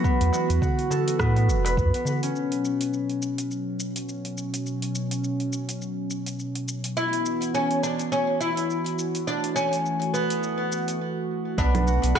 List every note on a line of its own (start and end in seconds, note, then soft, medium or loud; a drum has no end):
0.00 2.31 E3 medium
0.00 2.40 F#3 loud
0.00 1.93 A3 medium
0.00 2.31 B3 medium
0.00 1.11 D4 medium
0.00 1.96 E4 medium
0.00 0.32 F#4 medium
0.00 2.31 F#4 medium
0.04 1.19 B3 loud
0.04 kick loud
0.04 shaker soft
0.21 0.31 E2 medium
0.21 open hi-hat soft
0.33 0.61 F#4 medium
0.33 darbuka ka medium
0.33 shaker medium
0.50 0.60 E2 medium
0.50 open hi-hat medium
0.50 shaker soft
0.62 3.06 F#4 medium
0.62 kick medium
0.62 darbuka dum medium
0.62 shaker soft
0.79 open hi-hat soft
0.90 3.10 A4 medium
0.90 darbuka ka soft
0.90 darbuka tek medium
0.90 darbuka dum medium
0.90 shaker medium
1.08 open hi-hat medium
1.08 shaker soft
1.19 1.49 A2 medium
1.19 1.36 B3 loud
1.19 kick medium
1.19 cross-stick medium
1.19 shaker soft
1.36 1.93 B3 medium
1.36 open hi-hat soft
1.36 darbuka tek soft
1.48 1.79 E1 medium
1.48 darbuka ka soft
1.48 shaker medium
1.65 3.70 B4 loud
1.65 open hi-hat medium
1.65 darbuka tek medium
1.65 shaker soft
1.77 1.92 G2 loud
1.77 kick medium
1.77 shaker soft
1.94 5.04 B3 medium
1.94 open hi-hat soft
2.05 darbuka dum medium
2.05 shaker medium
2.23 5.13 C#4 medium
2.23 open hi-hat medium
2.23 shaker soft
2.35 6.93 B2 medium
2.35 6.93 F#3 medium
2.35 6.93 C#4 medium
2.35 shaker soft
2.52 open hi-hat soft
2.65 shaker medium
2.81 open hi-hat soft
2.81 shaker soft
2.93 shaker soft
3.10 open hi-hat soft
3.22 shaker medium
3.38 open hi-hat soft
3.38 shaker soft
3.51 shaker soft
3.80 shaker medium
3.96 open hi-hat soft
3.96 shaker soft
4.09 shaker soft
4.25 open hi-hat soft
4.37 shaker medium
4.54 open hi-hat soft
4.54 shaker soft
4.66 shaker soft
4.82 open hi-hat soft
4.95 shaker medium
5.11 open hi-hat soft
5.11 shaker soft
5.24 shaker soft
5.40 open hi-hat soft
5.53 shaker medium
5.69 open hi-hat soft
5.69 shaker soft
5.82 shaker soft
6.10 shaker medium
6.26 open hi-hat soft
6.26 shaker soft
6.39 shaker soft
6.55 open hi-hat soft
6.68 shaker medium
6.84 open hi-hat medium
6.84 shaker soft
6.96 11.54 E3 medium
6.96 9.25 B3 medium
6.96 7.54 E4 medium
6.96 11.54 F#4 medium
6.96 shaker soft
7.13 open hi-hat soft
7.26 shaker medium
7.42 open hi-hat soft
7.42 shaker soft
7.55 7.83 C#4 medium
7.55 shaker soft
7.71 open hi-hat soft
7.83 8.12 D4 medium
7.83 shaker medium
7.99 open hi-hat soft
7.99 shaker soft
8.12 8.39 C#4 medium
8.12 shaker soft
8.41 9.27 E4 loud
8.41 shaker medium
8.57 open hi-hat soft
8.57 shaker soft
8.70 shaker soft
8.86 open hi-hat soft
8.99 shaker medium
9.15 open hi-hat soft
9.15 shaker soft
9.27 11.56 A3 medium
9.27 9.54 D4 medium
9.27 shaker soft
9.44 open hi-hat soft
9.56 10.15 C#4 medium
9.56 shaker medium
9.73 open hi-hat soft
9.73 shaker soft
9.86 shaker soft
10.02 open hi-hat soft
10.14 10.96 B3 medium
10.14 shaker medium
10.30 open hi-hat soft
10.30 shaker soft
10.43 shaker soft
10.72 shaker medium
10.88 open hi-hat soft
10.88 shaker soft
11.58 11.99 B1 loud
11.58 12.19 A3 medium
11.58 12.19 B3 loud
11.58 12.19 B3 medium
11.58 12.19 D4 medium
11.58 12.15 D4 medium
11.58 kick loud
11.58 shaker soft
11.75 open hi-hat soft
11.75 low conga medium
11.87 12.19 F#4 medium
11.87 shaker medium
12.03 12.14 B1 medium
12.03 open hi-hat medium
12.03 shaker soft
12.15 12.19 D4 medium
12.15 12.19 F#4 loud
12.15 kick loud
12.15 cross-stick loud